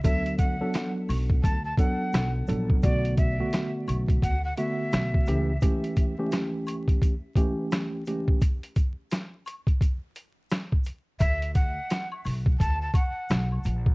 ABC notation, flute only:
X:1
M:4/4
L:1/16
Q:"Swing 16ths" 1/4=86
K:Amix
V:1 name="Flute"
e2 f3 z3 a a f3 z3 | d2 e3 z3 f f e6 | z16 | z16 |
e2 f3 z3 a a f3 z3 |]